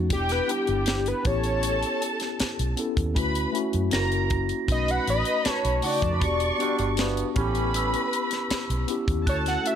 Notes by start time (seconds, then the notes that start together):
Already playing: F2 A3 C#4 D#4 F#4
0.10 E1 B3 D4 E4 G4 G5, kick, closed hi-hat
0.29 B4, snare, closed hi-hat
0.48 B3 D4 E4 G4, closed hi-hat
0.67 G1, closed hi-hat
0.86 snare, closed hi-hat
1.06 B4, closed hi-hat
1.24 A1 B3 C#4 E4 G4 A4 C#5 A5, kick, closed hi-hat
1.44 closed hi-hat
1.63 closed hi-hat
1.83 closed hi-hat
2.02 closed hi-hat
2.20 snare, closed hi-hat
2.40 muted fingered electric bass stroke, snare, closed hi-hat
2.59 B1, closed hi-hat
2.76 B3 C#4 E4 A4, closed hi-hat
2.97 D#2, kick, closed hi-hat
3.14 D2 A3 C#4 E4 F#4 B4 B5, kick, closed hi-hat
3.35 closed hi-hat
3.52 A3 C#4 E4 F#4, closed hi-hat
3.73 F#2, closed hi-hat
3.91 F#1 A#3 C#4 E4 F#4 A#4 A#5 A#6, snare, closed hi-hat
4.12 closed hi-hat
4.30 kick, closed hi-hat
4.49 closed hi-hat
4.67 B1 A3 C#4 D#4 F#4 B4 B5, kick, closed hi-hat
4.72 D#5
4.88 F#5, closed hi-hat
5.08 A1 D#5, closed hi-hat
5.25 closed hi-hat
5.45 A5, muted fingered electric bass stroke, snare, closed hi-hat
5.51 C#5
5.65 B1 C#5, closed hi-hat
5.82 C#3 A3 D#4 F#4 D5 F#5 C#6, open hi-hat
5.92 G4 G5
6.02 F2 A4 A5, kick, closed hi-hat
6.12 B4 B5
6.20 E1 B3 D4 F#4 G4 D5 C#6, kick, closed hi-hat
6.40 closed hi-hat
6.58 B2 G3 B3 D4 F#4 G4, closed hi-hat
6.79 G1, closed hi-hat
6.97 G2 E3 B3, snare, closed hi-hat
7.17 closed hi-hat
7.35 A1 A2 G3 B3 C#4 E4 G4 B4 B5, kick, closed hi-hat
7.55 closed hi-hat
7.74 E6, closed hi-hat
7.94 closed hi-hat
8.13 closed hi-hat
8.31 snare, closed hi-hat
8.51 muted fingered electric bass stroke, snare, closed hi-hat
8.70 B1, closed hi-hat
8.87 B3 C#4 E4 G4, closed hi-hat
9.08 D#2, kick, closed hi-hat
9.26 D2 A3 C#4 E4 A4 C#5 A5 F#6, kick, closed hi-hat
9.46 F#5, snare, closed hi-hat
9.64 A3 C#4 E4 F#4 E5, closed hi-hat